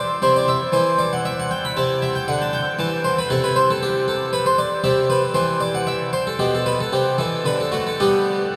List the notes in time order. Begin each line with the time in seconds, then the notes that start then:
Already playing: E4 D5
0.22 C3 E4 C5
0.36 D5
0.48 E5
0.72 E3 C5
0.98 D5
1.13 F#5
1.25 E5
1.40 F#5
1.51 G5
1.65 B5
1.77 C3 E4 A5
2.02 E5
2.15 G5
2.28 D3 F#5
2.42 A5
2.53 G5
2.79 E3 A5
3.04 C5
3.19 B4
3.30 C3 E4 A4
3.44 B4
3.56 C5
3.71 A4
3.83 G4
4.08 A4
4.33 B4
4.46 C5
4.58 D5
4.84 C3 G4 E5
5.10 B4
5.35 E3 C5
5.60 D5
5.75 F#5
5.87 E5
6.13 C5
6.27 A4
6.39 B2 G4
6.55 A4
6.66 B4
6.81 A4
6.92 C3 G4
7.18 E3 A4
7.45 D3 B4
7.60 A4
7.72 A3 F#4
7.87 A4
8.00 G3 B3 D4 G4